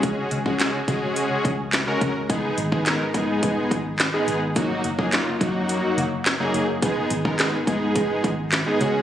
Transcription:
<<
  \new Staff \with { instrumentName = "Analog polysynth" } { \time 4/4 \key gis \minor \tempo 4 = 106 <gis cis' fis' gis'>8 r16 <gis cis' fis' gis'>16 <gis cis' fis' gis'>16 r16 <gis cis' fis' gis'>4 r8. <gis cis' fis' ais'>8 r16 | <gis b dis' gis'>8 r16 <gis b dis' gis'>16 <gis b dis' ais'>16 r16 <gis b dis' gis'>4 r8. <gis b dis' gis'>8 r16 | <fis ais dis' fis'>8 r16 <fis ais dis' gis'>16 <fis ais dis' eis'>16 r16 <fis ais dis' fis'>4 r8. <fis ais dis' gis'>8 r16 | <gis b dis' gis'>8 r16 <gis b dis' ais'>16 <gis b dis' gis'>16 r16 <gis b dis' gis'>4 r8. <gis b dis' gis'>16 <gis cis' fis' gis'>8 | }
  \new Staff \with { instrumentName = "Fingered electric bass" } { \clef bass \time 4/4 \key gis \minor cis,8 cis,4 cis4 cis,4 cis,8~ | cis,8 gis,,4 gis,4 gis,,4 gis,,8~ | gis,,8 fis,,4 fis,4 fis,,4 fis,,8~ | fis,,8 gis,,4 gis,4 gis,,4 cis,8 | }
  \new DrumStaff \with { instrumentName = "Drums" } \drummode { \time 4/4 <hh bd>8 hh16 bd16 <hc hh sn>8 <hh bd>8 hh8 <hh bd>8 <hc hh sn>8 <hh bd>8 | <hh bd>8 hh16 bd16 <hc hh sn>8 <hh bd>8 <hh bd>8 <hh bd>8 <hc hh sn>8 hh8 | <hh bd>8 hh16 bd16 <hc hh sn>8 <hh bd>8 hh8 hh8 <hc hh sn>8 hh8 | <hh bd>8 hh16 bd16 <hc hh sn>8 <hh bd>8 <hh bd>8 <hh bd>8 <hc hh sn>8 hh8 | }
>>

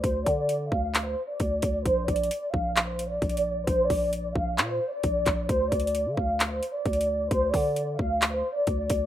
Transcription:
<<
  \new Staff \with { instrumentName = "Violin section" } { \time 4/4 \key d \minor \tempo 4 = 132 c''8 d''4 f''8. c''8 d''4~ d''16 | c''8 d''4 f''8. c''8 d''4~ d''16 | c''8 d''4 f''8. c''8 d''4~ d''16 | c''8 d''4 f''8. c''8 d''4~ d''16 |
c''8 d''4 f''8. c''8 d''4~ d''16 | }
  \new Staff \with { instrumentName = "808-style bass" } { \clef bass \time 4/4 \key d \minor d,8 d4 d,4 r8 d,8 d,8 | bes,,8 bes,,8 r8 bes,,4. bes,,4 | bes,,8 bes,,4 bes,,8 bes,8 r8 bes,,8 bes,,8 | d,8 d,8. d16 d,4 r8 d,4 |
d,8 d4 d,4 r8 d,8 d,8 | }
  \new DrumStaff \with { instrumentName = "Drums" } \drummode { \time 4/4 <hh bd>8 <hh bd>8 hh8 bd8 <hc hh>4 <hh bd>8 <hh bd>8 | \tuplet 3/2 { <hh bd>16 r16 r16 <hh bd>16 hh16 hh16 } hh8 bd8 <hc hh>8 hh8 \tuplet 3/2 { <hh bd>16 hh16 hh16 r16 r16 r16 } | <hh bd>8 <hho bd>8 hh8 bd8 <hc hh>4 <hh bd>8 <hc hh bd>8 | \tuplet 3/2 { <hh bd>16 r16 r16 <hh bd>16 hh16 hh16 } hh8 bd8 <hc hh>8 hh8 \tuplet 3/2 { <hh bd>16 hh16 hh16 r16 r16 r16 } |
<hh bd>8 <hho bd>8 hh8 bd8 <hc hh>4 <hh bd>8 <hh bd>8 | }
>>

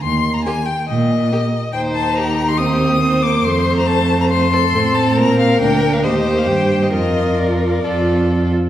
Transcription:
<<
  \new Staff \with { instrumentName = "Violin" } { \time 4/4 \key ees \major \tempo 4 = 139 c'''8. bes''16 aes''8 g''8 ees''2 | \key bes \major g''8 a''8 bes''8. c'''16 ees'''4. d'''8 | c'''8. bes''16 a''8. bes''16 c'''4. a''8 | bes''8 f''8 g''8. f''16 ees''8. f''16 g''8. ees''16 |
ees''4 d''2~ d''8 r8 | }
  \new Staff \with { instrumentName = "Violin" } { \time 4/4 \key ees \major r4 g'4 r4 g'4 | \key bes \major c''4 g'4 g'4 c''4~ | c''2 c''8 a'4. | bes'2 c''2 |
bes'2 a'4. r8 | }
  \new Staff \with { instrumentName = "Viola" } { \time 4/4 \key ees \major r4 bes4 r4 bes4 | \key bes \major ees'2 c'4 c'8 bes8 | a2 a4 c'4~ | c'4 d'4 g'2 |
f'2 f'4. r8 | }
  \new Staff \with { instrumentName = "Cello" } { \clef bass \time 4/4 \key ees \major ees,4 r4 bes,4 r4 | \key bes \major ees,1 | f,2. a,4 | bes,4 d,4 ees,4 g,4 |
f,2 f,4. r8 | }
>>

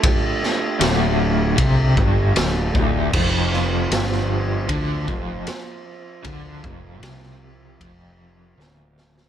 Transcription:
<<
  \new Staff \with { instrumentName = "Transistor combo organ" } { \time 4/4 \key f \major \tempo 4 = 77 << { g'1 | c''1 | bes'1 | } \\ { f'1~ | f'1~ | f'1 | } >> }
  \new Staff \with { instrumentName = "Transistor combo organ" } { \time 4/4 \key f \major <a d'>1 | <f c'>1~ | <f c'>1 | }
  \new Staff \with { instrumentName = "Overdriven electric guitar" } { \clef bass \time 4/4 \key f \major r4 d,4 c8 g,8 d,8 d,8 | f,4 g,4 d8 f,8 r4 | d8 f,8 c4 f,4 d,4 | }
  \new Staff \with { instrumentName = "Fingered electric bass" } { \clef bass \time 4/4 \key f \major r4 d,,4 c,8 g,,8 d,,8 d,,8 | f,,4 g,,4 d,8 f,,8 r4 | d,8 f,,8 c,4 f,,4 d,,4 | }
  \new DrumStaff \with { instrumentName = "Drums" } \drummode { \time 4/4 <bd rb>8 sn8 <rb sn>4 <bd rb>8 bd8 <rb sn>8 bd8 | <cymc bd>8 sn8 <rb sn>16 sn8. <bd rb>8 bd8 <rb sn>4 | <bd rb>8 bd8 <rb sn>16 sn8. <bd rb>4 sn8 sn16 sn16 | }
>>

